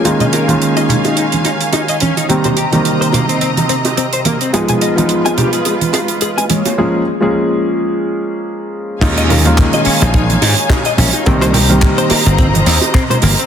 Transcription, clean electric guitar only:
X:1
M:4/4
L:1/16
Q:"Swing 16ths" 1/4=107
K:Ebmix
V:1 name="Clean electric guitar"
E e B z2 e D E E z E z E e D E | C c G z2 c B, C C z C z C c B, C | A a e z2 a G A A z A z A a A, B, | z16 |
E e B z2 e D E E z E z E e D E | C c G z2 c B, C C z C z C c B, C |]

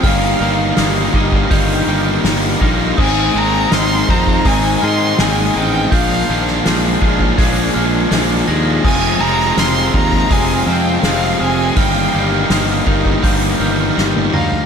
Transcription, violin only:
X:1
M:4/4
L:1/8
Q:1/4=82
K:Eb
V:1 name="Violin"
f2 z6 | a b c' b a c' a g | f2 z6 | a b c' b a g f a |
g2 z4 z f |]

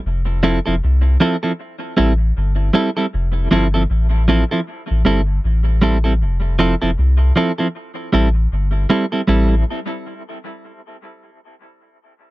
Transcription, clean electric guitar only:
X:1
M:4/4
L:1/16
Q:"Swing 16ths" 1/4=78
K:Am
V:1 name="Clean electric guitar"
z2 [F,CEA] [F,CEA] z2 [F,CEA] [F,CEA] z2 [G,CEA] z3 [G,CEA] [G,CEA] | z2 [F,CEA] [F,CEA] z2 [F,CEA] [F,CEA] z2 [G,CEA] z3 [G,CEA] [G,CEA] | z2 [F,CEA] [F,CEA] z2 [F,CEA] [F,CEA] z2 [G,CEA] z3 [G,CEA] [G,CEA] | [G,CEA] z12 z3 |]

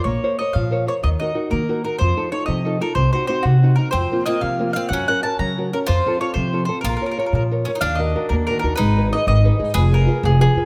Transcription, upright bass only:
X:1
M:6/8
L:1/8
Q:3/8=124
K:Bbm
V:1 name="Upright bass" clef=bass
B,,, z2 B,,3 | E,, z2 E,3 | F,, z2 F,3 | C,, z2 C,3 |
F,, z2 F,3 | G,, z2 G,3 | F,, z2 F,3 | B,,, z2 B,,3 |
[K:Ebm] E,,3 E,,2 E,, | A,,,3 A,,,2 A,, | F,,,3 F,,,2 F,, |]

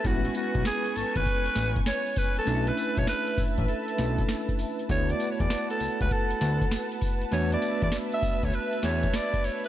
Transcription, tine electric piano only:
X:1
M:4/4
L:1/8
Q:"Swing 16ths" 1/4=99
K:A
V:1 name="Tine electric piano"
[G,B,CE]8 | [A,CD^DE]4- [A,C=D^DE] [A,C=DE]3 | [A,B,EF]8 | [A,B,DF]8 |]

